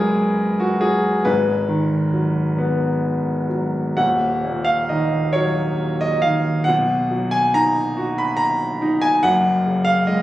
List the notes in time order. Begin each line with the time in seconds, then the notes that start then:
Already playing: F#1 F#2 C#3 F#3 G#3 G#4 A#4 B4 C#5
0.60 F#4
0.81 F#3 G#4
1.25 G#1 G#2 B4
1.69 D#3
2.13 F#3
2.58 B3
3.49 F#3
3.97 D#1 D#2 F#5
4.45 A#2
4.65 F5
4.89 D#3 D#5
5.33 F#3 C#5
6.01 D#5
6.22 D#3 F5
6.64 B1 F#5
6.68 B2
7.11 F#3
7.31 G#5
7.54 D#4 A#5
7.97 F#4
8.18 B5
8.37 A#5
8.82 D#4
9.02 G#5
9.23 F#1 F#2 F#5
9.66 C#3
9.85 F5
10.07 G#3 D#5